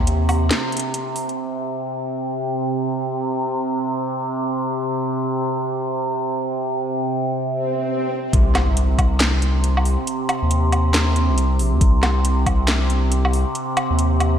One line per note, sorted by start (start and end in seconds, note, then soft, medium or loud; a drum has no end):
0.00 0.51 D#2 medium
0.00 1.36 C3 medium
0.07 closed hi-hat medium
0.29 open hi-hat medium
0.29 low woodblock soft
0.51 snare loud
0.51 closed hi-hat medium
0.72 closed hi-hat medium
0.77 closed hi-hat medium
0.79 closed hi-hat medium
0.94 closed hi-hat medium
1.16 open hi-hat medium
1.29 closed hi-hat soft
1.38 8.32 C3 medium
7.46 swell medium
8.33 9.97 C2 loud
8.33 14.39 C3 medium
8.33 kick loud
8.33 closed hi-hat medium
8.33 impact medium
8.55 snare medium
8.55 closed hi-hat medium
8.55 low woodblock medium
8.77 closed hi-hat medium
8.99 kick medium
8.99 closed hi-hat medium
8.99 low woodblock medium
9.20 snare loud
9.20 clap medium
9.20 closed hi-hat medium
9.42 closed hi-hat medium
9.64 closed hi-hat medium
9.77 low woodblock medium
9.85 open hi-hat medium
10.07 closed hi-hat medium
10.29 closed hi-hat medium
10.29 low woodblock medium
10.42 11.31 D#2 medium
10.51 closed hi-hat medium
10.72 closed hi-hat medium
10.72 low woodblock medium
10.94 snare loud
10.94 clap medium
10.94 closed hi-hat medium
11.16 closed hi-hat medium
11.29 11.61 C2 medium
11.38 closed hi-hat medium
11.59 11.74 A#1 medium
11.59 open hi-hat medium
11.73 11.80 D#2 loud
11.81 13.45 C2 loud
11.81 kick loud
11.81 closed hi-hat medium
12.03 snare medium
12.03 closed hi-hat soft
12.03 low woodblock medium
12.25 closed hi-hat medium
12.46 kick medium
12.46 closed hi-hat medium
12.46 low woodblock medium
12.68 snare loud
12.68 clap medium
12.68 closed hi-hat medium
12.90 closed hi-hat medium
13.12 closed hi-hat medium
13.25 low woodblock medium
13.33 open hi-hat medium
13.55 closed hi-hat medium
13.77 closed hi-hat medium
13.77 low woodblock medium
13.90 14.39 D#2 medium
13.99 closed hi-hat medium
14.20 closed hi-hat medium
14.20 low woodblock medium